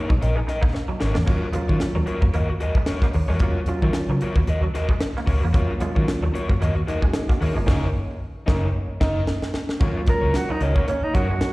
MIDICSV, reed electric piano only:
0, 0, Header, 1, 2, 480
1, 0, Start_track
1, 0, Key_signature, -6, "minor"
1, 0, Tempo, 533333
1, 1150, Time_signature, 4, 2, 24, 8
1, 10375, End_track
2, 0, Start_track
2, 0, Title_t, "Reed electric piano"
2, 0, Program_c, 0, 4
2, 1147, Note_on_c, 0, 54, 88
2, 1153, Note_on_c, 0, 58, 77
2, 1156, Note_on_c, 0, 61, 79
2, 1161, Note_on_c, 0, 65, 89
2, 1295, Note_off_c, 0, 54, 0
2, 1298, Note_off_c, 0, 58, 0
2, 1300, Note_off_c, 0, 61, 0
2, 1303, Note_off_c, 0, 65, 0
2, 1388, Note_on_c, 0, 54, 82
2, 1392, Note_on_c, 0, 58, 85
2, 1398, Note_on_c, 0, 61, 81
2, 1401, Note_on_c, 0, 65, 98
2, 1932, Note_off_c, 0, 54, 0
2, 1934, Note_off_c, 0, 58, 0
2, 1937, Note_off_c, 0, 61, 0
2, 1939, Note_off_c, 0, 65, 0
2, 3059, Note_on_c, 0, 54, 94
2, 3063, Note_on_c, 0, 58, 82
2, 3067, Note_on_c, 0, 61, 80
2, 3076, Note_on_c, 0, 65, 96
2, 3210, Note_off_c, 0, 54, 0
2, 3212, Note_off_c, 0, 58, 0
2, 3214, Note_off_c, 0, 61, 0
2, 3219, Note_off_c, 0, 65, 0
2, 3308, Note_on_c, 0, 54, 83
2, 3313, Note_on_c, 0, 58, 76
2, 3317, Note_on_c, 0, 61, 79
2, 3321, Note_on_c, 0, 65, 101
2, 3852, Note_off_c, 0, 54, 0
2, 3854, Note_off_c, 0, 58, 0
2, 3856, Note_off_c, 0, 61, 0
2, 3858, Note_off_c, 0, 65, 0
2, 4980, Note_on_c, 0, 54, 90
2, 4987, Note_on_c, 0, 58, 74
2, 4991, Note_on_c, 0, 61, 82
2, 4997, Note_on_c, 0, 65, 96
2, 5131, Note_off_c, 0, 54, 0
2, 5135, Note_off_c, 0, 58, 0
2, 5136, Note_off_c, 0, 61, 0
2, 5139, Note_off_c, 0, 65, 0
2, 5218, Note_on_c, 0, 54, 87
2, 5224, Note_on_c, 0, 58, 81
2, 5230, Note_on_c, 0, 61, 78
2, 5234, Note_on_c, 0, 65, 99
2, 5767, Note_off_c, 0, 54, 0
2, 5770, Note_off_c, 0, 58, 0
2, 5773, Note_off_c, 0, 61, 0
2, 5775, Note_off_c, 0, 65, 0
2, 6190, Note_on_c, 0, 63, 61
2, 6198, Note_on_c, 0, 58, 54
2, 6317, Note_off_c, 0, 63, 0
2, 6322, Note_off_c, 0, 58, 0
2, 6323, Note_on_c, 0, 66, 69
2, 6325, Note_on_c, 0, 61, 55
2, 6424, Note_off_c, 0, 66, 0
2, 6425, Note_off_c, 0, 61, 0
2, 6426, Note_on_c, 0, 68, 76
2, 6431, Note_on_c, 0, 63, 63
2, 6555, Note_off_c, 0, 68, 0
2, 6558, Note_off_c, 0, 63, 0
2, 6558, Note_on_c, 0, 66, 70
2, 6562, Note_on_c, 0, 61, 51
2, 6661, Note_off_c, 0, 66, 0
2, 6664, Note_off_c, 0, 61, 0
2, 6664, Note_on_c, 0, 68, 58
2, 6668, Note_on_c, 0, 63, 49
2, 6795, Note_off_c, 0, 68, 0
2, 6797, Note_off_c, 0, 63, 0
2, 6802, Note_on_c, 0, 70, 57
2, 6806, Note_on_c, 0, 65, 52
2, 6896, Note_on_c, 0, 58, 107
2, 6902, Note_on_c, 0, 61, 109
2, 6904, Note_off_c, 0, 70, 0
2, 6906, Note_off_c, 0, 65, 0
2, 6907, Note_on_c, 0, 63, 97
2, 7070, Note_off_c, 0, 58, 0
2, 7073, Note_off_c, 0, 61, 0
2, 7077, Note_off_c, 0, 63, 0
2, 7626, Note_on_c, 0, 58, 97
2, 7629, Note_on_c, 0, 61, 98
2, 7636, Note_on_c, 0, 63, 106
2, 7797, Note_off_c, 0, 58, 0
2, 7798, Note_off_c, 0, 61, 0
2, 7802, Note_off_c, 0, 63, 0
2, 8107, Note_on_c, 0, 63, 108
2, 8114, Note_on_c, 0, 58, 91
2, 8277, Note_off_c, 0, 63, 0
2, 8282, Note_off_c, 0, 58, 0
2, 8819, Note_on_c, 0, 54, 94
2, 8822, Note_on_c, 0, 58, 79
2, 8825, Note_on_c, 0, 61, 87
2, 8832, Note_on_c, 0, 65, 103
2, 9371, Note_off_c, 0, 54, 0
2, 9372, Note_off_c, 0, 58, 0
2, 9374, Note_off_c, 0, 61, 0
2, 9377, Note_off_c, 0, 65, 0
2, 10020, Note_on_c, 0, 54, 68
2, 10024, Note_on_c, 0, 58, 63
2, 10028, Note_on_c, 0, 61, 59
2, 10034, Note_on_c, 0, 66, 70
2, 10375, Note_off_c, 0, 54, 0
2, 10375, Note_off_c, 0, 58, 0
2, 10375, Note_off_c, 0, 61, 0
2, 10375, Note_off_c, 0, 66, 0
2, 10375, End_track
0, 0, End_of_file